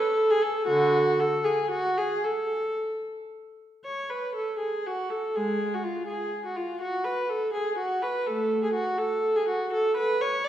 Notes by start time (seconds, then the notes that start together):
Already playing: A4
0.30 G#4
0.42 A4
0.67 D3 F#4
1.20 A4
1.44 G#4
1.71 F#4
1.98 G#4
2.24 A4
3.85 C#5
4.09 B4
4.35 A4
4.59 G#4
4.86 F#4
5.10 A4
5.36 G#3 G#4
5.74 F#4
5.83 F4
6.07 G#4
6.45 F#4
6.56 F4
6.81 F#4
7.04 B4
7.29 A4
7.53 G#4
7.78 F#4
8.03 B4
8.26 A3 A4
8.63 G#4
8.74 F#4
8.98 A4
9.36 G#4
9.48 F#4
9.73 A4
9.97 B4
10.21 C#5
10.44 D5